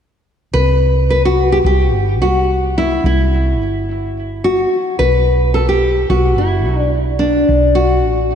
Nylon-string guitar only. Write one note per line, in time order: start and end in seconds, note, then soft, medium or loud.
0.54 1.06 B4 loud
1.10 1.25 B4 medium
1.25 1.52 F#4 medium
1.52 1.57 G4 medium
1.66 2.21 G4 medium
2.22 2.77 F#4 medium
2.78 3.03 E4 medium
3.06 4.48 E4 medium
4.44 4.98 F#4 medium
4.99 5.54 B4 medium
5.54 5.68 A4 medium
5.69 6.09 G4 medium
6.10 6.38 F#4 medium
6.38 6.78 E4 medium
6.78 6.89 D4 medium
7.19 7.77 D4 medium
7.75 8.35 F#4 medium